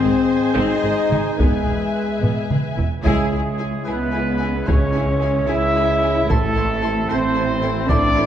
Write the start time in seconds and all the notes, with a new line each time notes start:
Already playing: G#2 G#3 C4 G#4 C5 D#5 G#5
0.02 G#1 G#2 G#4
0.55 G#1 G#2 C4 D#4 D#5
0.82 G#1 G#2 G#4
1.10 G#1 G#2 D#4, taiko mid
1.38 E1 E2 G#3 B3 G#4 B4 E5, taiko
1.65 E1 E2 G#4
2.21 E1 E2 B3, taiko low-mid
2.49 E1 E2 G#4, taiko mid
2.76 E1 E2 E4, taiko low
3.03 C#2 G#3 C#4 E4 G#4 C#5 E5 G#5, taiko
3.31 E4 G#4 G#5
3.58 E4 G#4 G#5
3.84 C#2 B3 E4 G#4 B4 G#5
4.11 E4 G#4 G#5
4.38 E4 G#4 G#5
4.66 C#2 C#4 E4 G#4 C#5 G#5, taiko
4.94 E4 G#4 G#5
5.21 E4 G#4 G#5
5.47 C#2 E4 G#4 E5 G#5
5.75 E4 G#4 G#5
6.01 E4 G#4 G#5
6.27 A1 A3 C4 E4 A4 C6, taiko
6.55 E4 A4 C6
6.81 E4 A4 C6
7.08 A1 C4 E4 A4 C5 C6
7.35 E4 A4 C6
7.62 E4 A4 C6
7.89 A1 D4 E4 A4 D5 C6, taiko
8.15 E4 A4 C6